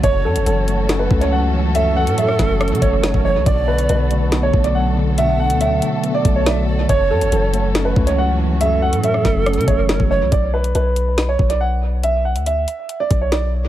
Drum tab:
HH |x--------x--x-----x-----x--------x--------------|x--------x--x-----x-----x-x-x-x-----x-----------|x--------x--x-----x-----x--------x--------------|x--------x--x-----x-----x-----x-----x-----------|
SD |------------------------o-----------------------|---------------r--o-----r-----------o-----------|------------------------o-----------------------|------------------------------------o-----------|
BD |o-----------------------------o-----------------|------------------o-----------o--------o--------|o-----------------------------o-----------------|------------------------------o-----------------|

HH |x--------x--x-----x-----x--------x--------------|x--------x--x-----x-----x-x-x-x-----x-----------|x--------x--x-----x-----x--------x--------------|x--------x--x-----x-----x-----x-----x-----------|
SD |------------------------o-----------------------|---------------r--o-----r-----------o-----------|------------------------o-----------------------|------------------------------------o-----------|
BD |o-----------------------------o-----------------|------------------o-----------o--------o--------|o-----------------------------o-----------------|------------------------------o-----------------|